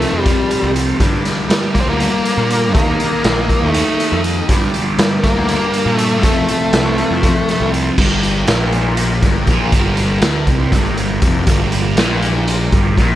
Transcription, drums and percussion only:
0.02 snare soft
0.02 closed hi-hat medium
0.26 kick loud
0.26 closed hi-hat medium
0.51 closed hi-hat medium
0.76 closed hi-hat medium
1.00 kick medium
1.00 closed hi-hat medium
1.25 snare soft
1.25 closed hi-hat medium
1.50 snare loud
1.50 closed hi-hat medium
1.75 kick medium
1.75 closed hi-hat medium
2.00 closed hi-hat medium
2.25 closed hi-hat medium
2.50 closed hi-hat medium
2.75 kick loud
2.75 closed hi-hat medium
3.00 closed hi-hat medium
3.24 snare loud
3.24 closed hi-hat medium
3.50 kick medium
3.50 closed hi-hat medium
3.74 closed hi-hat medium
4.00 closed hi-hat medium
4.24 closed hi-hat medium
4.49 kick loud
4.49 closed hi-hat medium
4.74 closed hi-hat medium
4.99 snare loud
4.99 closed hi-hat medium
5.24 kick medium
5.24 snare soft
5.24 closed hi-hat medium
5.49 closed hi-hat medium
5.74 closed hi-hat medium
5.99 closed hi-hat medium
6.23 kick loud
6.23 closed hi-hat medium
6.48 closed hi-hat medium
6.73 snare loud
6.73 closed hi-hat medium
6.98 closed hi-hat medium
7.23 kick loud
7.23 closed hi-hat medium
7.49 snare soft
7.49 closed hi-hat medium
7.74 closed hi-hat medium
7.98 kick medium
7.98 crash loud
8.23 closed hi-hat medium
8.47 snare loud
8.47 closed hi-hat medium
8.73 closed hi-hat medium
8.97 closed hi-hat medium
9.23 kick loud
9.23 snare soft
9.23 closed hi-hat medium
9.47 kick loud
9.47 closed hi-hat medium
9.72 kick medium
9.72 closed hi-hat medium
9.97 closed hi-hat medium
10.22 snare loud
10.22 closed hi-hat medium
10.47 kick loud
10.47 closed hi-hat medium
10.72 kick loud
10.72 snare soft
10.72 closed hi-hat medium
10.97 closed hi-hat medium
11.22 kick medium
11.22 closed hi-hat medium
11.47 kick loud
11.47 closed hi-hat medium
11.72 closed hi-hat medium
11.97 snare loud
11.97 closed hi-hat medium
12.22 closed hi-hat medium
12.48 closed hi-hat medium
12.73 kick loud
12.73 closed hi-hat medium
12.98 kick medium
12.98 snare soft
12.98 closed hi-hat medium

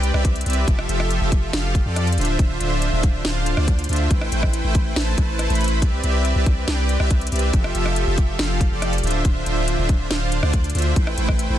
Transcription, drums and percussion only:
0.03 closed hi-hat medium
0.14 cross-stick medium
0.25 kick loud
0.25 closed hi-hat medium
0.36 closed hi-hat medium
0.41 closed hi-hat medium
0.46 closed hi-hat medium
0.50 closed hi-hat medium
0.53 closed hi-hat medium
0.68 kick loud
0.68 closed hi-hat medium
0.79 cross-stick medium
0.89 closed hi-hat medium
1.00 cross-stick medium
1.11 closed hi-hat medium
1.32 kick loud
1.32 closed hi-hat medium
1.53 snare loud
1.53 closed hi-hat medium
1.75 kick loud
1.75 closed hi-hat medium
1.96 cross-stick medium
1.96 closed hi-hat medium
2.07 closed hi-hat soft
2.12 closed hi-hat medium
2.18 closed hi-hat medium
2.21 closed hi-hat medium
2.25 closed hi-hat medium
2.39 kick loud
2.39 closed hi-hat medium
2.60 closed hi-hat medium
2.82 closed hi-hat medium
3.03 kick loud
3.03 closed hi-hat medium
3.25 snare loud
3.25 closed hi-hat medium
3.46 closed hi-hat medium
3.57 cross-stick medium
3.68 kick loud
3.68 closed hi-hat medium
3.79 closed hi-hat soft
3.84 closed hi-hat medium
3.89 closed hi-hat soft
3.93 closed hi-hat medium
3.96 closed hi-hat medium
4.11 kick loud
4.11 closed hi-hat medium
4.21 cross-stick medium
4.32 closed hi-hat medium
4.43 kick medium
4.43 cross-stick medium
4.53 closed hi-hat medium
4.75 kick loud
4.75 closed hi-hat medium
4.96 snare loud
4.96 closed hi-hat medium
5.18 kick loud
5.18 closed hi-hat medium
5.39 cross-stick medium
5.39 closed hi-hat medium
5.50 closed hi-hat soft
5.55 closed hi-hat medium
5.61 closed hi-hat soft
5.64 closed hi-hat medium
5.68 closed hi-hat medium
5.82 kick loud
5.82 closed hi-hat medium
6.03 closed hi-hat medium
6.25 closed hi-hat medium
6.46 kick loud
6.46 closed hi-hat medium
6.68 snare loud
6.68 closed hi-hat medium
6.89 closed hi-hat medium
7.00 cross-stick medium
7.10 kick loud
7.10 closed hi-hat medium
7.21 closed hi-hat soft
7.27 closed hi-hat medium
7.32 closed hi-hat soft
7.36 closed hi-hat medium
7.39 closed hi-hat medium
7.53 kick loud
7.53 closed hi-hat medium
7.64 cross-stick medium
7.75 closed hi-hat medium
7.86 cross-stick medium
7.96 closed hi-hat medium
8.18 kick loud
8.18 closed hi-hat medium
8.39 snare loud
8.39 closed hi-hat medium
8.61 kick loud
8.61 closed hi-hat medium
8.82 cross-stick medium
8.82 closed hi-hat medium
8.93 closed hi-hat soft
8.98 closed hi-hat medium
9.03 closed hi-hat medium
9.07 closed hi-hat medium
9.11 closed hi-hat medium
9.25 kick loud
9.25 closed hi-hat medium
9.46 closed hi-hat medium
9.68 closed hi-hat medium
9.89 kick loud
9.89 closed hi-hat medium
10.11 snare loud
10.11 closed hi-hat medium
10.32 closed hi-hat medium
10.43 cross-stick medium
10.53 kick loud
10.53 closed hi-hat medium
10.64 closed hi-hat soft
10.70 closed hi-hat medium
10.75 closed hi-hat medium
10.78 closed hi-hat medium
10.82 closed hi-hat medium
10.96 kick loud
10.96 closed hi-hat medium
11.07 cross-stick medium
11.18 closed hi-hat medium
11.29 kick medium
11.29 cross-stick medium
11.39 closed hi-hat medium

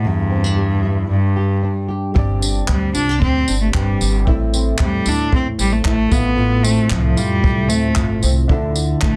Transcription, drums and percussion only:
2.16 kick loud
2.42 tambourine medium
2.68 kick loud
2.68 clap medium
2.95 tambourine medium
3.22 kick loud
3.48 tambourine medium
3.74 kick loud
3.74 clap loud
4.01 tambourine medium
4.27 kick medium
4.54 tambourine medium
4.79 kick loud
4.79 clap loud
5.06 tambourine medium
5.32 kick loud
5.59 tambourine medium
5.85 kick medium
5.85 clap loud
6.12 kick loud
6.12 tambourine medium
6.64 tambourine medium
6.90 kick loud
6.90 clap loud
7.17 tambourine medium
7.44 kick loud
7.70 tambourine medium
7.96 kick loud
7.96 clap loud
8.23 tambourine medium
8.49 kick loud
8.76 tambourine medium
9.01 kick loud
9.01 clap loud

